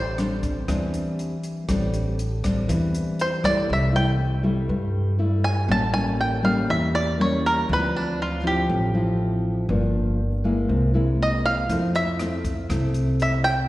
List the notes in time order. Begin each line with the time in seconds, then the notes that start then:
Already playing: A1 A2 C5
0.18 G3 C4 D4, cross-stick, closed hi-hat
0.43 kick, closed hi-hat
0.68 E2 E3 G3 C4 D4, kick, cross-stick, closed hi-hat
0.94 closed hi-hat
1.19 closed hi-hat
1.43 closed hi-hat
1.68 A1 A2 G3 C4 D4, kick, cross-stick, closed hi-hat
1.94 closed hi-hat
2.19 closed hi-hat
2.43 G3 C4 D4, kick, cross-stick, closed hi-hat
2.68 E2 E3, kick, closed hi-hat
2.95 closed hi-hat
3.19 C5, closed hi-hat
3.43 G3 A3 E4 D5, kick, cross-stick, closed hi-hat
3.67 C2 C3
3.73 E5
3.92 G3 A3 E4
3.96 G5
4.43 G3 A3 E4
4.68 G2
5.19 G3 A3 E4
5.44 G#5
5.68 A1 A2 G3 A#3 C#4 A5
5.93 G3 A#3 C#4 G#5
6.21 G5
6.42 G3 A#3 C#4 F5
6.68 E2 E3 E5
6.95 D5
7.19 G3 A#3 C#4 C#5
7.46 A#4
7.69 D2 D3 F3 C4 E4
7.73 B4
7.97 D4
8.22 F4
8.43 F3 C4 E4 G4
8.69 A1 A2
8.94 F3 C4 E4
9.69 G1 G2 F3 A#3 D4
10.44 G#3 A#3 E4
10.68 C2 C3
10.94 G#3 A#3 E4
11.23 D#5
11.46 F5
11.69 F2 F3 A3 C4 E4, kick, closed hi-hat
11.95 E5, closed hi-hat
12.19 A3 C4 E4, cross-stick, closed hi-hat
12.45 kick, closed hi-hat
12.70 C2 C3 A3 C4 E4, kick, cross-stick, closed hi-hat
12.94 closed hi-hat
13.20 E5, closed hi-hat
13.44 G5, closed hi-hat